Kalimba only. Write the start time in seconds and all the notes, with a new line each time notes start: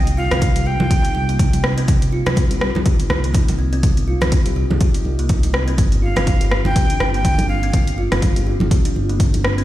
0.17 F4
0.31 C4
0.56 G4
0.66 G4
0.91 G4
1.05 D#4
1.29 A#3
1.39 D#4
1.64 C4
1.78 C4
1.88 C4
2.13 F4
2.26 C4
2.51 G4
2.61 G4
2.86 G4
2.99 D#4
3.24 A#3
3.34 D#4
3.59 C4
3.73 C4
3.83 C4
4.08 F4
4.21 C4
4.46 G4
4.56 G4
4.81 G4
4.95 D#4
5.19 A#3
5.29 D#4
5.54 C4
5.68 C4
5.78 C4
6.02 F4
6.16 C4
6.41 G4
6.52 G4
6.76 G4
6.90 D4
7.14 A#3
7.25 D4
7.49 C4
7.63 C4
7.74 C4
7.98 F4
8.12 C4
8.36 G4
8.47 G4
8.71 G4
8.85 D4
9.09 A#3
9.20 D4
9.44 C4
9.58 C4